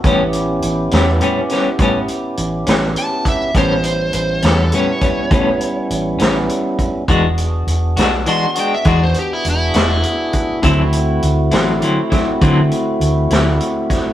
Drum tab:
HH |xxxxxxxxxxxx|xxxxxxxxxxxx|xxxxxxxxxxxx|xxxxxxxxxxxx|
SD |---o-o---o--|---o-----o--|---o-----o--|---o-o---o-o|
BD |o-----o----o|o----oo----o|o-----o----o|o----oo----o|